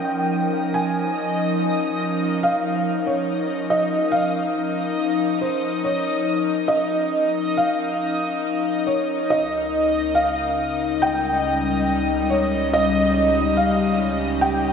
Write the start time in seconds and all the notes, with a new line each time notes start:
Already playing: F3 C#4 D#4 A#4 D#5 G5 D#6
0.74 G#5
2.43 F5
3.07 C#5
3.70 D#5
4.12 F5
5.41 C5
5.84 C#5
6.68 D#5
7.57 F5
8.87 C#5
9.30 C#2 C#3 C#4 D#5
10.15 F5
10.82 G3
11.02 G5
12.30 C#5
12.73 D#5
12.89 G4
13.57 F5
14.41 G5